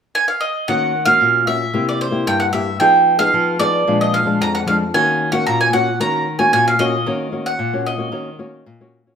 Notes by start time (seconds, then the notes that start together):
0.15 G#5
0.28 F5
0.41 D#5
0.68 D#3 A#3 C#4 F#4 F#5
1.05 A#3 C#4 F#4 F5
1.21 A#2
1.47 A#3 C#4 F#4 E5
1.74 C3 A#3 E4 G4
1.89 D5
2.01 C5
2.11 A#3 E4 G4
2.27 G2 G5
2.40 F#5
2.53 A#3 E4 G4 E5
2.80 F3 B3 D#4 G#4 G5
3.19 B3 D#4 G#4 F5
3.34 F3
3.59 B3 D#4 G#4 D5
3.87 A#2 F3 G#3 D4
4.01 D#5
4.14 F5
4.26 F3 G#3 D4
4.41 F2 A#5
4.55 F#5
4.66 F3 G#3 D4 F5
4.94 D#3 A#3 C#4 F#4 G#5
5.32 A#3 C#4 F#4 F#5
5.46 A#2 A#5
5.61 G#5
5.73 A#3 C#4 F#4 F#5
6.00 D#3 A#3 C#4 F#4 A#5
6.39 A#3 C#4 F#4 G#5
6.53 A#2 G#5
6.68 F5
6.79 A#3 C#4 F#4 D#5
7.06 D#3 A#3 C#4 F#4
7.32 A#3 C#4 F#4
7.46 F#5
7.59 A#2
7.73 A#3 C#4 F#4
7.86 D#5
7.98 A#3 C#4 F#4
8.12 D#3 A#3 C#4 F#4
8.39 A#3 C#4 F#4
8.66 A#2
8.80 A#3 C#4 F#4
9.06 A#3 C#4 F#4